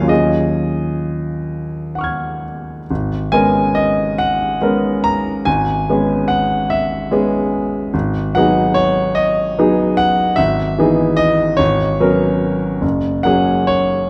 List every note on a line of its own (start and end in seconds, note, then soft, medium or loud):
0.00 0.12 A#1 soft
0.00 2.79 D#2 soft
0.00 2.80 F#3 soft
0.00 0.12 A#3 soft
0.00 0.02 C#4 soft
0.00 2.82 C#4 soft
0.00 0.04 F4 soft
0.00 0.12 A#4 soft
0.00 0.12 F5 medium
0.00 0.12 F#5 medium
0.00 0.12 G#5 medium
0.00 0.12 A#5 medium
0.04 2.83 F4 soft
0.04 2.85 G#4 soft
0.09 2.43 D#5 medium
1.95 2.86 F#5 soft
1.95 2.87 C#6 soft
2.01 2.88 F6 soft
2.01 2.90 G#6 soft
2.91 3.33 G#1 soft
3.32 4.57 G#3 soft
3.32 4.57 B3 soft
3.32 4.57 C#4 soft
3.32 4.57 A#4 soft
3.32 3.76 G#5 medium
3.75 4.18 D#5 medium
4.18 5.03 F#5 medium
4.61 5.42 G#3 soft
4.61 5.42 B3 soft
4.61 5.42 C#4 soft
4.61 5.43 A#4 soft
5.04 5.46 A#5 medium
5.45 5.86 G#1 soft
5.45 6.28 G#5 medium
5.89 7.08 G#3 soft
5.89 7.09 B3 soft
5.89 7.09 C#4 soft
5.89 7.09 G#4 soft
6.28 6.70 F#5 medium
6.70 7.94 E5 medium
7.11 7.89 G#3 soft
7.11 7.90 B3 soft
7.11 7.90 C#4 soft
7.11 7.90 G#4 soft
7.94 8.33 G#1 soft
8.35 9.54 F#3 soft
8.35 9.54 B3 soft
8.35 9.55 D#4 soft
8.35 9.55 G#4 soft
8.35 8.75 F#5 medium
8.74 9.15 C#5 medium
9.15 9.98 D#5 medium
9.59 10.35 F#3 soft
9.59 10.35 B3 soft
9.59 10.35 D#4 soft
9.59 10.35 G#4 soft
9.97 10.38 F#5 medium
10.36 10.77 G#1 soft
10.36 11.18 E5 medium
10.78 11.56 E3 soft
10.78 11.56 B3 soft
10.78 11.57 D#4 soft
10.78 11.57 G#4 soft
11.17 11.59 D#5 medium
11.57 11.99 G#1 medium
11.57 12.81 C#5 medium
12.00 12.79 F#3 soft
12.00 12.79 B3 soft
12.00 12.79 C#4 soft
12.00 12.79 A#4 soft
12.81 13.24 F#1 soft
13.23 14.10 F#3 soft
13.23 14.10 A#3 soft
13.23 14.10 C#4 soft
13.23 14.10 G#4 soft
13.23 13.68 F#5 medium
13.67 14.10 C#5 medium